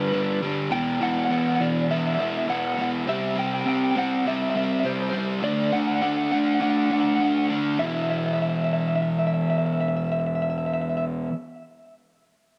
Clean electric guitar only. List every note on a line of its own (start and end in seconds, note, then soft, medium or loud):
0.01 0.07 B4 medium
0.08 0.15 B4 medium
0.15 0.23 B4 medium
0.24 0.30 B4 medium
0.30 0.38 B4 medium
0.72 1.02 G5 loud
1.03 1.10 F#5 loud
1.11 1.18 F#5 medium
1.18 1.24 F#5 loud
1.25 1.32 F#5 medium
1.32 1.39 F#5 loud
1.39 1.47 F#5 medium
1.48 1.55 F#5 loud
1.55 1.63 F#5 medium
1.61 1.88 D5 loud
1.91 1.99 E5 loud
2.00 2.06 E5 medium
2.07 2.14 E5 loud
2.14 2.21 E5 medium
2.22 2.30 E5 loud
2.30 2.37 E5 medium
2.37 2.45 E5 medium
2.50 2.58 F#5 loud
2.66 2.74 F#5 medium
2.74 2.81 F#5 medium
2.82 2.90 F#5 medium
3.09 3.39 E5 loud
3.39 3.46 G5 loud
3.46 3.53 G5 medium
3.54 3.61 G5 medium
3.61 3.68 G5 medium
3.68 3.75 G5 loud
3.76 3.83 G5 medium
3.84 3.90 G5 medium
3.91 3.98 G5 medium
3.98 4.27 F#5 loud
4.28 4.34 E5 loud
4.35 4.42 E5 medium
4.42 4.49 E5 medium
4.50 4.57 E5 medium
4.57 4.64 E5 loud
4.65 4.72 E5 medium
4.73 4.79 E5 medium
4.80 4.87 E5 medium
4.86 4.93 C5 medium
5.02 5.09 C5 medium
5.10 5.18 C5 medium
5.19 5.27 C5 medium
5.44 5.74 D5 loud
5.73 5.79 F#5 loud
5.80 5.87 F#5 medium
5.87 5.94 F#5 medium
5.94 6.01 F#5 medium
6.02 6.09 F#5 medium
6.09 6.17 F#5 medium
6.17 6.24 F#5 medium
6.24 6.31 F#5 medium
6.32 6.39 F#5 medium
6.46 6.54 F#5 medium
6.54 6.62 F#5 medium
6.62 6.69 F#5 medium
6.70 6.77 F#5 medium
6.77 6.85 F#5 medium
6.86 6.93 F#5 medium
6.93 7.00 F#5 medium
7.00 7.07 F#5 medium
7.07 7.15 F#5 medium
7.15 7.23 F#5 medium
7.24 7.30 F#5 medium
7.31 7.38 F#5 medium
7.38 7.46 F#5 medium
7.79 7.86 E5 medium
7.87 7.94 E5 medium
7.94 8.02 E5 medium
8.02 8.10 E5 medium
8.10 8.18 E5 medium
8.18 8.25 E5 medium
8.26 8.33 E5 medium
8.33 8.41 E5 medium
8.42 8.49 E5 medium
8.49 8.55 E5 medium
8.56 8.63 E5 medium
8.64 8.72 E5 medium
8.73 8.80 E5 medium
8.81 8.87 E5 medium
8.88 8.95 E5 medium
8.96 9.02 E5 medium
9.02 9.10 E5 medium
9.11 9.18 E5 medium
9.19 9.26 E5 medium
9.27 9.34 E5 medium
9.34 9.42 E5 medium
9.42 9.50 E5 medium
9.50 9.58 E5 medium
9.58 9.65 E5 medium
9.66 9.73 E5 medium
9.73 9.80 E5 medium
9.81 9.88 E5 medium
9.88 9.96 E5 medium
9.97 10.04 E5 medium
10.04 10.11 E5 medium
10.12 10.19 E5 medium
10.20 10.26 E5 medium
10.27 10.34 E5 medium
10.35 10.42 E5 medium
10.42 10.49 E5 medium
10.50 10.57 E5 medium
10.58 10.66 E5 medium
10.66 10.73 E5 medium
10.74 10.81 E5 medium
10.81 10.89 E5 medium
10.89 10.97 E5 medium
10.97 11.05 E5 medium